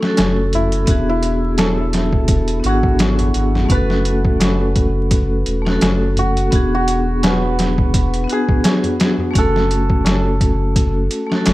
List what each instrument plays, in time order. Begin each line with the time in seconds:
Already playing: vibraphone A3 F#4 A4, santur A4
0.00 vibraphone C#4, snare
0.04 vibraphone F#4 A4
0.17 sub bass F#1, snare, closed hi-hat, tabla na
0.53 santur E4, closed hi-hat, tabla ge
0.72 closed hi-hat
0.86 sub bass E1, vibraphone B3 D4 F#4, kick, closed hi-hat
0.91 vibraphone G#4
1.09 santur E4
1.23 closed hi-hat
1.58 santur A4, snare, closed hi-hat, tabla na
1.93 snare, closed hi-hat
2.13 kick
2.28 kick, closed hi-hat
2.48 closed hi-hat
2.60 vibraphone B3 D4
2.64 sub bass G#1, vibraphone F#4, santur F#4, closed hi-hat
2.69 vibraphone G#4
2.83 kick
2.99 snare, closed hi-hat, tabla na
3.19 closed hi-hat, tabla ge
3.34 sub bass G#1, closed hi-hat
3.55 snare, tabla ge
3.65 vibraphone A3 C#4
3.70 sub bass F#1, vibraphone F#4, santur B4, kick, closed hi-hat
3.75 vibraphone A4
3.90 snare
4.05 closed hi-hat
4.25 kick
4.40 snare, closed hi-hat, tabla na
4.76 kick, closed hi-hat
5.11 kick, closed hi-hat
5.46 sub bass E1, closed hi-hat
5.62 vibraphone A3 C#4
5.66 vibraphone F#4, snare
5.72 vibraphone A4
5.81 sub bass F#1, snare, closed hi-hat, tabla na
6.16 santur F#4, closed hi-hat, tabla ge
6.37 closed hi-hat
6.51 sub bass E1, vibraphone B3 D4 F#4, kick, closed hi-hat
6.55 vibraphone G#4
6.75 santur F#4
6.88 closed hi-hat
7.23 santur B4, snare, closed hi-hat, tabla na
7.59 snare, closed hi-hat
7.78 kick
7.94 kick, closed hi-hat
8.14 closed hi-hat
8.24 vibraphone B3 D4
8.29 vibraphone F#4, santur G#4, closed hi-hat
8.34 vibraphone G#4
8.49 kick
8.64 snare, closed hi-hat, tabla na
8.83 closed hi-hat, tabla ge
9.00 snare, closed hi-hat
9.18 tabla ge
9.31 vibraphone A3 C#4
9.35 sub bass F#1, vibraphone F#4, santur A4, kick, closed hi-hat
9.40 vibraphone A4
9.56 snare
9.71 closed hi-hat
9.90 kick
10.05 snare, closed hi-hat, tabla na
10.41 kick, closed hi-hat
10.76 kick, closed hi-hat
11.11 closed hi-hat
11.26 vibraphone A3 C#4
11.32 vibraphone F#4, snare
11.36 vibraphone A4
11.45 sub bass F#1, snare, closed hi-hat, tabla na